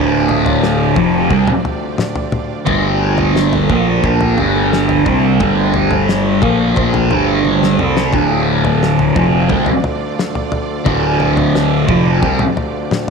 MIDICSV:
0, 0, Header, 1, 6, 480
1, 0, Start_track
1, 0, Key_signature, -1, "minor"
1, 0, Tempo, 682594
1, 1878, Time_signature, 4, 2, 24, 8
1, 9212, End_track
2, 0, Start_track
2, 0, Title_t, "String section"
2, 0, Program_c, 0, 48
2, 0, Note_on_c, 0, 57, 65
2, 0, Note_on_c, 0, 62, 58
2, 0, Note_on_c, 0, 65, 65
2, 0, Note_on_c, 0, 67, 66
2, 0, Note_on_c, 0, 74, 74
2, 1846, Note_off_c, 0, 74, 0
2, 1848, Note_off_c, 0, 57, 0
2, 1848, Note_off_c, 0, 65, 0
2, 1862, Note_off_c, 0, 67, 0
2, 1865, Note_on_c, 0, 70, 76
2, 1867, Note_on_c, 0, 58, 64
2, 1870, Note_on_c, 0, 69, 59
2, 1874, Note_on_c, 0, 67, 63
2, 3773, Note_off_c, 0, 70, 0
2, 3797, Note_on_c, 0, 72, 76
2, 5684, Note_off_c, 0, 58, 0
2, 5688, Note_off_c, 0, 67, 0
2, 5697, Note_off_c, 0, 72, 0
2, 5713, Note_on_c, 0, 57, 66
2, 5713, Note_on_c, 0, 65, 65
2, 5713, Note_on_c, 0, 74, 74
2, 7604, Note_off_c, 0, 69, 0
2, 7648, Note_on_c, 0, 67, 62
2, 9212, Note_off_c, 0, 57, 0
2, 9212, Note_off_c, 0, 62, 0
2, 9212, Note_off_c, 0, 65, 0
2, 9212, Note_off_c, 0, 67, 0
2, 9212, Note_off_c, 0, 74, 0
2, 9212, End_track
3, 0, Start_track
3, 0, Title_t, "Distorted electric guitar"
3, 0, Program_c, 1, 30
3, 0, Note_on_c, 1, 38, 74
3, 0, Note_on_c, 1, 45, 88
3, 0, Note_on_c, 1, 50, 84
3, 670, Note_off_c, 1, 38, 0
3, 672, Note_off_c, 1, 45, 0
3, 673, Note_off_c, 1, 50, 0
3, 673, Note_on_c, 1, 41, 94
3, 677, Note_on_c, 1, 48, 91
3, 678, Note_on_c, 1, 53, 93
3, 902, Note_off_c, 1, 48, 0
3, 907, Note_off_c, 1, 41, 0
3, 910, Note_off_c, 1, 53, 0
3, 910, Note_on_c, 1, 48, 83
3, 917, Note_on_c, 1, 55, 92
3, 1026, Note_off_c, 1, 48, 0
3, 1030, Note_off_c, 1, 55, 0
3, 1868, Note_on_c, 1, 43, 80
3, 1872, Note_on_c, 1, 50, 87
3, 1874, Note_on_c, 1, 55, 93
3, 2586, Note_off_c, 1, 43, 0
3, 2588, Note_off_c, 1, 50, 0
3, 2589, Note_off_c, 1, 55, 0
3, 2597, Note_on_c, 1, 46, 89
3, 2604, Note_on_c, 1, 53, 90
3, 2606, Note_on_c, 1, 58, 87
3, 2831, Note_off_c, 1, 46, 0
3, 2834, Note_off_c, 1, 53, 0
3, 2835, Note_off_c, 1, 58, 0
3, 2843, Note_on_c, 1, 46, 83
3, 2845, Note_on_c, 1, 53, 94
3, 2848, Note_on_c, 1, 58, 96
3, 3074, Note_off_c, 1, 46, 0
3, 3075, Note_off_c, 1, 53, 0
3, 3076, Note_off_c, 1, 58, 0
3, 3082, Note_on_c, 1, 43, 90
3, 3083, Note_on_c, 1, 50, 94
3, 3090, Note_on_c, 1, 55, 97
3, 3553, Note_off_c, 1, 43, 0
3, 3553, Note_off_c, 1, 55, 0
3, 3554, Note_off_c, 1, 50, 0
3, 3562, Note_on_c, 1, 55, 100
3, 3563, Note_on_c, 1, 48, 90
3, 3569, Note_on_c, 1, 60, 95
3, 3793, Note_off_c, 1, 55, 0
3, 3794, Note_off_c, 1, 48, 0
3, 3797, Note_off_c, 1, 60, 0
3, 3800, Note_on_c, 1, 43, 88
3, 3805, Note_on_c, 1, 50, 90
3, 3806, Note_on_c, 1, 55, 88
3, 4512, Note_off_c, 1, 43, 0
3, 4515, Note_off_c, 1, 50, 0
3, 4515, Note_off_c, 1, 55, 0
3, 4517, Note_on_c, 1, 46, 82
3, 4522, Note_on_c, 1, 58, 94
3, 4523, Note_on_c, 1, 53, 96
3, 4750, Note_off_c, 1, 46, 0
3, 4753, Note_off_c, 1, 53, 0
3, 4753, Note_off_c, 1, 58, 0
3, 4763, Note_on_c, 1, 46, 80
3, 4768, Note_on_c, 1, 53, 78
3, 4772, Note_on_c, 1, 58, 93
3, 4993, Note_off_c, 1, 46, 0
3, 4996, Note_off_c, 1, 53, 0
3, 4998, Note_off_c, 1, 58, 0
3, 5002, Note_on_c, 1, 43, 88
3, 5005, Note_on_c, 1, 50, 87
3, 5008, Note_on_c, 1, 55, 93
3, 5473, Note_off_c, 1, 43, 0
3, 5474, Note_off_c, 1, 50, 0
3, 5476, Note_off_c, 1, 55, 0
3, 5487, Note_on_c, 1, 48, 75
3, 5489, Note_on_c, 1, 55, 88
3, 5492, Note_on_c, 1, 60, 94
3, 5715, Note_off_c, 1, 48, 0
3, 5716, Note_off_c, 1, 55, 0
3, 5718, Note_off_c, 1, 60, 0
3, 5720, Note_on_c, 1, 38, 74
3, 5724, Note_on_c, 1, 45, 84
3, 5730, Note_on_c, 1, 50, 88
3, 6431, Note_off_c, 1, 38, 0
3, 6433, Note_off_c, 1, 45, 0
3, 6436, Note_off_c, 1, 50, 0
3, 6436, Note_on_c, 1, 41, 83
3, 6444, Note_on_c, 1, 48, 89
3, 6447, Note_on_c, 1, 53, 94
3, 6669, Note_off_c, 1, 41, 0
3, 6669, Note_off_c, 1, 48, 0
3, 6675, Note_off_c, 1, 53, 0
3, 6678, Note_on_c, 1, 48, 89
3, 6683, Note_on_c, 1, 55, 100
3, 6790, Note_off_c, 1, 48, 0
3, 6793, Note_off_c, 1, 55, 0
3, 7628, Note_on_c, 1, 38, 80
3, 7631, Note_on_c, 1, 45, 81
3, 7637, Note_on_c, 1, 50, 85
3, 8344, Note_off_c, 1, 38, 0
3, 8346, Note_off_c, 1, 45, 0
3, 8349, Note_off_c, 1, 50, 0
3, 8352, Note_on_c, 1, 41, 85
3, 8359, Note_on_c, 1, 48, 95
3, 8364, Note_on_c, 1, 53, 93
3, 8580, Note_off_c, 1, 48, 0
3, 8586, Note_off_c, 1, 41, 0
3, 8589, Note_on_c, 1, 48, 80
3, 8592, Note_off_c, 1, 53, 0
3, 8594, Note_on_c, 1, 55, 93
3, 8705, Note_off_c, 1, 48, 0
3, 8707, Note_off_c, 1, 55, 0
3, 9212, End_track
4, 0, Start_track
4, 0, Title_t, "Harmonium"
4, 0, Program_c, 2, 20
4, 0, Note_on_c, 2, 38, 64
4, 5725, Note_off_c, 2, 38, 0
4, 5735, Note_on_c, 2, 38, 72
4, 9212, Note_off_c, 2, 38, 0
4, 9212, End_track
5, 0, Start_track
5, 0, Title_t, "Fingered electric bass"
5, 0, Program_c, 3, 33
5, 0, Note_on_c, 3, 26, 89
5, 650, Note_off_c, 3, 26, 0
5, 678, Note_on_c, 3, 29, 88
5, 900, Note_off_c, 3, 29, 0
5, 916, Note_on_c, 3, 36, 90
5, 1028, Note_off_c, 3, 36, 0
5, 1880, Note_on_c, 3, 31, 84
5, 2571, Note_off_c, 3, 31, 0
5, 2599, Note_on_c, 3, 34, 88
5, 2822, Note_off_c, 3, 34, 0
5, 2839, Note_on_c, 3, 34, 92
5, 3062, Note_off_c, 3, 34, 0
5, 3078, Note_on_c, 3, 31, 92
5, 3530, Note_off_c, 3, 31, 0
5, 3560, Note_on_c, 3, 36, 86
5, 3783, Note_off_c, 3, 36, 0
5, 3802, Note_on_c, 3, 31, 85
5, 4492, Note_off_c, 3, 31, 0
5, 4519, Note_on_c, 3, 34, 89
5, 4742, Note_off_c, 3, 34, 0
5, 4761, Note_on_c, 3, 34, 93
5, 4983, Note_off_c, 3, 34, 0
5, 4994, Note_on_c, 3, 31, 92
5, 5448, Note_off_c, 3, 31, 0
5, 5476, Note_on_c, 3, 36, 84
5, 5700, Note_off_c, 3, 36, 0
5, 5721, Note_on_c, 3, 26, 87
5, 6410, Note_off_c, 3, 26, 0
5, 6443, Note_on_c, 3, 29, 88
5, 6663, Note_off_c, 3, 29, 0
5, 6682, Note_on_c, 3, 36, 87
5, 6791, Note_off_c, 3, 36, 0
5, 7639, Note_on_c, 3, 26, 87
5, 8329, Note_off_c, 3, 26, 0
5, 8358, Note_on_c, 3, 29, 86
5, 8580, Note_off_c, 3, 29, 0
5, 8599, Note_on_c, 3, 36, 93
5, 8708, Note_off_c, 3, 36, 0
5, 9212, End_track
6, 0, Start_track
6, 0, Title_t, "Drums"
6, 204, Note_on_c, 9, 43, 70
6, 274, Note_off_c, 9, 43, 0
6, 324, Note_on_c, 9, 43, 82
6, 394, Note_off_c, 9, 43, 0
6, 446, Note_on_c, 9, 38, 72
6, 516, Note_off_c, 9, 38, 0
6, 677, Note_on_c, 9, 36, 94
6, 677, Note_on_c, 9, 43, 77
6, 677, Note_on_c, 9, 47, 70
6, 747, Note_off_c, 9, 43, 0
6, 747, Note_off_c, 9, 47, 0
6, 748, Note_off_c, 9, 36, 0
6, 918, Note_on_c, 9, 36, 99
6, 918, Note_on_c, 9, 43, 82
6, 988, Note_off_c, 9, 36, 0
6, 988, Note_off_c, 9, 43, 0
6, 1037, Note_on_c, 9, 43, 80
6, 1037, Note_on_c, 9, 47, 74
6, 1107, Note_off_c, 9, 43, 0
6, 1107, Note_off_c, 9, 47, 0
6, 1160, Note_on_c, 9, 43, 80
6, 1230, Note_off_c, 9, 43, 0
6, 1394, Note_on_c, 9, 47, 71
6, 1401, Note_on_c, 9, 38, 69
6, 1465, Note_off_c, 9, 47, 0
6, 1472, Note_off_c, 9, 38, 0
6, 1516, Note_on_c, 9, 43, 78
6, 1586, Note_off_c, 9, 43, 0
6, 1633, Note_on_c, 9, 43, 77
6, 1633, Note_on_c, 9, 47, 73
6, 1704, Note_off_c, 9, 43, 0
6, 1704, Note_off_c, 9, 47, 0
6, 1873, Note_on_c, 9, 43, 79
6, 1877, Note_on_c, 9, 36, 101
6, 1944, Note_off_c, 9, 43, 0
6, 1947, Note_off_c, 9, 36, 0
6, 2235, Note_on_c, 9, 43, 78
6, 2306, Note_off_c, 9, 43, 0
6, 2364, Note_on_c, 9, 38, 68
6, 2434, Note_off_c, 9, 38, 0
6, 2482, Note_on_c, 9, 43, 80
6, 2552, Note_off_c, 9, 43, 0
6, 2599, Note_on_c, 9, 43, 81
6, 2600, Note_on_c, 9, 36, 92
6, 2669, Note_off_c, 9, 43, 0
6, 2670, Note_off_c, 9, 36, 0
6, 2839, Note_on_c, 9, 36, 98
6, 2839, Note_on_c, 9, 43, 79
6, 2909, Note_off_c, 9, 36, 0
6, 2909, Note_off_c, 9, 43, 0
6, 2958, Note_on_c, 9, 43, 77
6, 3028, Note_off_c, 9, 43, 0
6, 3079, Note_on_c, 9, 43, 79
6, 3149, Note_off_c, 9, 43, 0
6, 3328, Note_on_c, 9, 38, 75
6, 3398, Note_off_c, 9, 38, 0
6, 3439, Note_on_c, 9, 43, 80
6, 3509, Note_off_c, 9, 43, 0
6, 3558, Note_on_c, 9, 43, 79
6, 3560, Note_on_c, 9, 36, 96
6, 3629, Note_off_c, 9, 43, 0
6, 3630, Note_off_c, 9, 36, 0
6, 3798, Note_on_c, 9, 43, 82
6, 3801, Note_on_c, 9, 36, 101
6, 3869, Note_off_c, 9, 43, 0
6, 3872, Note_off_c, 9, 36, 0
6, 4035, Note_on_c, 9, 43, 71
6, 4105, Note_off_c, 9, 43, 0
6, 4153, Note_on_c, 9, 43, 78
6, 4224, Note_off_c, 9, 43, 0
6, 4284, Note_on_c, 9, 38, 75
6, 4354, Note_off_c, 9, 38, 0
6, 4514, Note_on_c, 9, 43, 75
6, 4514, Note_on_c, 9, 47, 77
6, 4520, Note_on_c, 9, 36, 94
6, 4584, Note_off_c, 9, 43, 0
6, 4584, Note_off_c, 9, 47, 0
6, 4590, Note_off_c, 9, 36, 0
6, 4756, Note_on_c, 9, 43, 78
6, 4762, Note_on_c, 9, 36, 95
6, 4826, Note_off_c, 9, 43, 0
6, 4832, Note_off_c, 9, 36, 0
6, 4880, Note_on_c, 9, 43, 83
6, 4880, Note_on_c, 9, 47, 73
6, 4950, Note_off_c, 9, 43, 0
6, 4950, Note_off_c, 9, 47, 0
6, 4998, Note_on_c, 9, 43, 82
6, 5068, Note_off_c, 9, 43, 0
6, 5238, Note_on_c, 9, 48, 54
6, 5309, Note_off_c, 9, 48, 0
6, 5367, Note_on_c, 9, 38, 63
6, 5437, Note_off_c, 9, 38, 0
6, 5479, Note_on_c, 9, 45, 78
6, 5549, Note_off_c, 9, 45, 0
6, 5603, Note_on_c, 9, 38, 81
6, 5673, Note_off_c, 9, 38, 0
6, 5714, Note_on_c, 9, 43, 74
6, 5720, Note_on_c, 9, 36, 93
6, 5784, Note_off_c, 9, 43, 0
6, 5790, Note_off_c, 9, 36, 0
6, 6080, Note_on_c, 9, 43, 83
6, 6150, Note_off_c, 9, 43, 0
6, 6208, Note_on_c, 9, 38, 72
6, 6278, Note_off_c, 9, 38, 0
6, 6323, Note_on_c, 9, 43, 80
6, 6393, Note_off_c, 9, 43, 0
6, 6442, Note_on_c, 9, 36, 98
6, 6442, Note_on_c, 9, 43, 82
6, 6512, Note_off_c, 9, 36, 0
6, 6513, Note_off_c, 9, 43, 0
6, 6676, Note_on_c, 9, 43, 82
6, 6680, Note_on_c, 9, 36, 93
6, 6747, Note_off_c, 9, 43, 0
6, 6750, Note_off_c, 9, 36, 0
6, 6795, Note_on_c, 9, 43, 84
6, 6865, Note_off_c, 9, 43, 0
6, 6919, Note_on_c, 9, 43, 81
6, 6990, Note_off_c, 9, 43, 0
6, 7168, Note_on_c, 9, 38, 70
6, 7239, Note_off_c, 9, 38, 0
6, 7281, Note_on_c, 9, 43, 75
6, 7351, Note_off_c, 9, 43, 0
6, 7397, Note_on_c, 9, 43, 80
6, 7467, Note_off_c, 9, 43, 0
6, 7637, Note_on_c, 9, 43, 83
6, 7638, Note_on_c, 9, 36, 100
6, 7708, Note_off_c, 9, 43, 0
6, 7709, Note_off_c, 9, 36, 0
6, 7876, Note_on_c, 9, 43, 72
6, 7947, Note_off_c, 9, 43, 0
6, 7997, Note_on_c, 9, 43, 80
6, 8067, Note_off_c, 9, 43, 0
6, 8125, Note_on_c, 9, 38, 78
6, 8195, Note_off_c, 9, 38, 0
6, 8357, Note_on_c, 9, 36, 98
6, 8359, Note_on_c, 9, 43, 85
6, 8359, Note_on_c, 9, 47, 79
6, 8428, Note_off_c, 9, 36, 0
6, 8429, Note_off_c, 9, 43, 0
6, 8429, Note_off_c, 9, 47, 0
6, 8597, Note_on_c, 9, 36, 101
6, 8597, Note_on_c, 9, 43, 81
6, 8668, Note_off_c, 9, 36, 0
6, 8668, Note_off_c, 9, 43, 0
6, 8714, Note_on_c, 9, 43, 86
6, 8714, Note_on_c, 9, 47, 77
6, 8785, Note_off_c, 9, 43, 0
6, 8785, Note_off_c, 9, 47, 0
6, 8839, Note_on_c, 9, 43, 79
6, 8909, Note_off_c, 9, 43, 0
6, 9080, Note_on_c, 9, 47, 68
6, 9087, Note_on_c, 9, 38, 78
6, 9151, Note_off_c, 9, 47, 0
6, 9158, Note_off_c, 9, 38, 0
6, 9212, End_track
0, 0, End_of_file